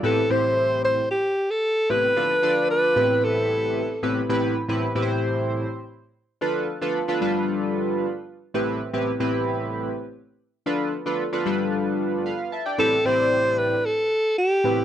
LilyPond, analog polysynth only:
\new Staff \with { instrumentName = "Analog polysynth" } { \time 4/4 \key a \minor \tempo 4 = 113 << { r1 | r1 | r1 | r1 |
r1 | r2. <b' f''>8 <e'' a''>16 <d'' g''>16~ | <d'' g''>16 r2. r8. | } \\ { <a, c' e' g' b'>16 r16 <a, c' e' g' c''>4~ <a, c' e' g' c''>16 r4. r16 <a, c' e' g' b'>16 r16 | <d' f' a' b'>16 r16 <d' f' a' d''>4 <a, c' e' g' b'>4. r8 <a, c' e' g' b'>16 r16 | <a, c' e' g' b'>8 r16 <a, c' e' g' b'>16 r16 <a, c' e' g' b' c''>4~ <a, c' e' g' b' c''>16 r4. | <d' f' a' b'>8 r16 <d' f' a' b'>16 r16 <d' f' a' b'>16 <g d' f' a' b'>4. r4 |
<a, c' e' g' b'>8 r16 <a, c' e' g' b'>16 r16 <a, c' e' g' b'>4~ <a, c' e' g' b'>16 r4. | <d' f' a' b'>8 r16 <d' f' a' b'>16 r16 <d' f' a' b'>16 <g d' f' a' b'>4. r4 | <a, c' e' g' b'>16 r16 <a, c' e' g' d''>4~ <a, c' e' g' d''>16 r4. r16 <a, c' e' g' b'>16 r16 | } >> }